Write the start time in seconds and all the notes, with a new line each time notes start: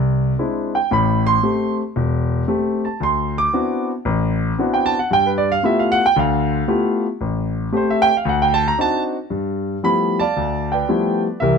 Already playing: C2
0.39 G#3 C4 D4 E4
0.75 G5
0.91 A1 A2 B5
1.27 C6
1.43 A3 C4 G4
1.96 E1
2.48 A3 C4 G4
2.85 A5
3.00 D2 C6
3.38 D6
3.53 B3 C4 D4 E4 F#4
4.05 A1
4.59 B3 C4 D4 E4 F#4
4.74 G5
4.86 A5
4.99 F#5
5.11 G2 G5
5.26 B4
5.38 D5
5.52 F5
5.63 A3 B3 E4 F4 G4 E5
5.79 F5
5.92 F#5
6.06 G5
6.16 D2 D3 F5
6.68 A3 B3 E4 F4 G4
7.21 A1
7.72 A3 C4 G4
7.77 C5
7.90 E5
8.02 G5
8.17 F5
8.25 D2 F#5
8.42 G5
8.54 A5
8.68 A#5
8.78 C4 D4 D#4 F#4 A5
9.30 G2
9.83 F3 G3 A3 B3 E4 B5
10.20 D5 F5 A5
10.36 D2
10.72 B4 D5 G5
10.88 F3 G3 A3 B3 E4
11.40 C2 E3 G4 A#4 E5